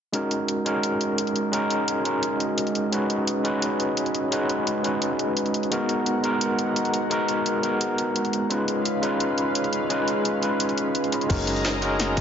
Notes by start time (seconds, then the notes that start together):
0.12 G#3 C#4 D#4 F#4 A#4 D#5, closed hi-hat
0.31 closed hi-hat
0.48 closed hi-hat
0.65 G#3 C#4 D#4 F#4 A#4, closed hi-hat
0.83 closed hi-hat
1.01 closed hi-hat
1.18 closed hi-hat
1.27 closed hi-hat
1.36 closed hi-hat
1.52 G#3 C#4 D#4 F#4 A#4, closed hi-hat
1.70 closed hi-hat
1.88 closed hi-hat
2.04 G#3 C#4 D#4 F#4 A#4, closed hi-hat
2.23 closed hi-hat
2.40 closed hi-hat
2.58 closed hi-hat
2.67 closed hi-hat
2.75 closed hi-hat
2.91 G#3 C#4 D#4 F#4 B4, closed hi-hat
3.10 closed hi-hat
3.27 closed hi-hat
3.44 G#3 C#4 D#4 F#4 B4, closed hi-hat
3.62 closed hi-hat
3.80 closed hi-hat
3.97 closed hi-hat
4.06 closed hi-hat
4.15 closed hi-hat
4.31 G#3 C#4 D#4 F#4 B4, closed hi-hat
4.50 closed hi-hat
4.67 closed hi-hat
4.83 G#3 C#4 D#4 F#4 B4, closed hi-hat
5.02 closed hi-hat
5.19 closed hi-hat
5.37 closed hi-hat
5.46 closed hi-hat
5.54 closed hi-hat
5.63 closed hi-hat
5.70 G#3 B3 D#4 F#4 A#4 F#5, closed hi-hat
5.89 closed hi-hat
6.06 closed hi-hat
6.23 G#3 B3 D#4 F#4 A#4, closed hi-hat
6.41 closed hi-hat
6.59 closed hi-hat
6.76 closed hi-hat
6.85 closed hi-hat
6.94 closed hi-hat
7.10 G#3 B3 D#4 F#4 A#4, closed hi-hat
7.28 closed hi-hat
7.46 closed hi-hat
7.62 G#3 B3 D#4 F#4 A#4, closed hi-hat
7.81 closed hi-hat
7.98 closed hi-hat
8.16 closed hi-hat
8.25 closed hi-hat
8.33 closed hi-hat
8.49 G#3 C#4 D#4 F4 B4 F5, closed hi-hat
8.68 closed hi-hat
8.85 closed hi-hat
9.02 G#3 C#4 D#4 F4 B4, closed hi-hat
9.20 closed hi-hat
9.38 closed hi-hat
9.55 closed hi-hat
9.64 closed hi-hat
9.73 closed hi-hat
9.89 G#3 C#4 D#4 F4 B4, closed hi-hat
10.08 closed hi-hat
10.25 closed hi-hat
10.41 G#3 C#4 D#4 F4 B4, closed hi-hat
10.60 closed hi-hat
10.69 closed hi-hat
10.78 closed hi-hat
10.95 closed hi-hat
11.04 closed hi-hat
11.12 G#3 C#4 D#4 F4 D#5, closed hi-hat
11.21 closed hi-hat
11.29 F#1 G#3 C#4 D#4 F#4 G#4 A#4 D#5 A#5, kick, closed hi-hat, crash, cabasa
11.47 closed hi-hat
11.56 closed hi-hat
11.65 snare, closed hi-hat, cabasa
11.81 G#3 C#4 D#4 F#4 A#4, closed hi-hat
12.00 snare, closed hi-hat, cabasa
12.17 kick, closed hi-hat